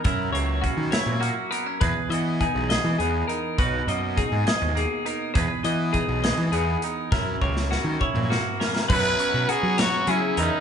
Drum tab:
CC |------------|------------|------------|------------|
HH |x-x-x-x-x-x-|x-x-x-x-x-x-|x-x-x-x-x-x-|x-x-x-x-x-x-|
SD |------o-----|------o-----|------o-----|------o-----|
T2 |------------|------------|------------|------------|
BD |o---o-------|o---o-------|o---o-------|o---o-------|

CC |------------|x-----------|
HH |------------|--x-x-x-x-x-|
SD |o--oo---o-oo|------o-----|
T2 |-------o----|------------|
BD |o-o---o-----|o-----------|